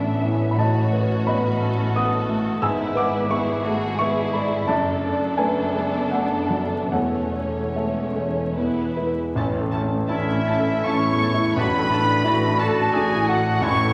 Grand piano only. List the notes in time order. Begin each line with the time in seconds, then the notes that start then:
Already playing: A2 B3 C#4 A4 C#5 E5 A5
0.22 E3
0.51 B5
0.58 A2 D#5 A5
0.93 B4
1.26 B3 D#5 B5
1.61 A3
1.95 B3 F#5 D#6
2.29 A3
2.62 G#2 G#5 E6
2.95 B4 F#5 D6
3.30 B3 E5 C#6
3.65 A3
3.99 B3 E5 C#6
4.33 G#3 D5 B5
4.67 F#2 D5 A5
5.04 D5
5.38 A3 B4 G#5
5.75 G#3
6.11 A3 A4 F#5
6.50 F#3
6.92 E2 A4 F#5
7.33 C#5
7.76 A3 A4 E5
8.16 G#3
8.57 E2
8.97 E4 B4
9.35 A1
9.61 A4
9.83 C#4
10.08 D4
10.32 C#4
10.60 A4
10.86 C#4
11.10 E2
11.34 E4
11.56 A1
11.78 A4
12.01 D4
12.24 E4
12.47 D4
12.69 A4
12.92 D4
13.16 A2
13.39 F#4
13.61 A1
13.84 A4